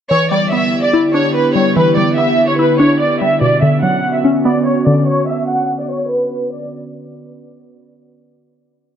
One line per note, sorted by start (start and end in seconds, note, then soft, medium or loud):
0.11 6.69 D3 medium
0.11 1.14 E3 medium
0.11 3.38 B3 medium
0.11 3.38 E4 medium
0.11 3.38 G4 medium
0.11 0.28 C#5 loud
0.31 1.35 G3 medium
0.31 0.49 D5 medium
0.52 1.56 B3 medium
0.52 0.81 E5 medium
0.83 0.92 D5 medium
0.93 1.97 E4 medium
1.14 2.18 D4 medium
1.14 1.32 C#5 medium
1.35 1.52 B4 medium
1.56 1.96 G3 medium
1.56 1.73 C#5 medium
1.76 2.80 E3 medium
1.76 1.94 B4 loud
1.97 3.00 G3 medium
1.97 2.14 D5 medium
2.18 3.21 B3 medium
2.18 2.47 E5 medium
2.49 2.57 C#5 medium
2.59 3.42 E4 medium
2.59 2.77 B4 medium
2.80 3.42 D4 medium
2.80 2.97 C#5 medium
3.01 3.18 D5 medium
3.22 3.42 G3 medium
3.22 3.39 E5 medium
3.41 4.45 B2 medium
3.41 6.70 B3 medium
3.41 6.70 C#4 medium
3.41 6.70 F#4 medium
3.41 3.60 D5 medium
3.62 4.66 D3 medium
3.62 3.80 E5 medium
3.83 4.86 F#3 medium
3.83 4.12 F#5 medium
4.14 4.23 E5 medium
4.24 5.28 C#4 medium
4.45 5.49 B3 medium
4.45 4.63 D5 medium
4.66 4.83 C#5 medium
4.86 5.90 D3 medium
4.86 5.04 D5 medium
5.08 5.25 C#5 loud
5.28 5.46 E5 medium
5.49 5.78 F#5 medium
5.79 5.88 D5 medium
5.90 6.08 C#5 medium
6.10 6.49 B4 medium
6.52 6.70 D5 medium